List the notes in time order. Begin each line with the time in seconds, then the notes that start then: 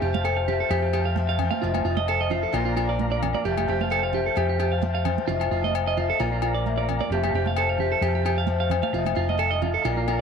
Already playing: F2 A3 F5 G5 A5
0.01 F1 C4 G4
0.14 F5, high conga
0.24 F3 A4, low agogo
0.37 F5
0.48 A3 G4, low conga
0.60 A4
0.70 F2 C3 G4 A4, low agogo
0.82 G4
0.93 C4 G4, low agogo
1.05 F5
1.16 F3 A3, high conga
1.29 F5
1.39 C4, low conga, low agogo
1.51 F5, high conga
1.62 F1 F2 A3 F4 D#5 A5
1.74 F4, high conga, low agogo
1.84 F1 D#4 F4
1.97 D#5, high conga
2.08 F3 A4, low agogo
2.21 D#5
2.30 A3 F4, low conga
2.43 A4
2.53 A#1 A#2 F3 A#3 D4 F4 D5 A#5, low agogo
2.65 F4
2.77 D4 F4, low agogo
2.89 D5
2.99 muted steel-string acoustic guitar stroke, high conga
3.12 D5
3.23 low conga, low agogo
3.34 D5, high conga
3.45 F1 F2 A3 G4 G5 A5
3.58 G4, high conga, low agogo
3.68 F1 C4 G4
3.81 F5, high conga
3.90 F3 A4, low agogo
4.03 F5
4.13 A3 G4, low conga
4.26 A4
4.36 F2 C3 G4 A4, low agogo
4.49 G4
4.59 C4 G4, low agogo
4.72 F5
4.82 F3 A3, high conga
4.95 F5
5.05 C4, low conga, low agogo
5.18 high conga
5.28 F1 F2 A3 F4 D#5 F5, low conga
5.40 F4, low agogo
5.51 F1 D#4 F4
5.64 D#5, high conga
5.75 F3, low agogo
5.87 D#5
5.97 A3 F4, low conga
6.10 A4
6.20 A#1 A#2 A#3 F4 D5 F5 A#5, low agogo
6.32 F4
6.42 F4, low agogo
6.54 D5
6.66 A2, high conga
6.78 D5
6.89 G2, low conga, low agogo
7.00 D5, high conga
7.10 F1 F2 A3 G4 G5 A5
7.23 G4, high conga, low agogo
7.33 F1 C4 G4
7.46 F5, high conga
7.57 F3 A4, low agogo
7.69 F5
7.78 A3 G4, low conga
7.92 A4
8.01 F2 C3 G4 A4, low agogo
8.15 G4
8.25 C4 G4, low agogo
8.38 F5
8.47 F3 A3, high conga
8.60 F5
8.70 C4, low conga, low agogo
8.83 F5, high conga
8.93 F1 F2 A3 F4 D#5
9.06 muted clean electric guitar stroke, high conga, low agogo
9.15 F1 D#4 F4
9.29 D#5, high conga
9.38 G2 A4, low agogo
9.51 D#5
9.62 A2 F4, low conga
9.74 A4
9.85 A#1 A#2 A#3 F4 D5 A#5, low agogo
9.97 F4
10.08 D4 F4, low agogo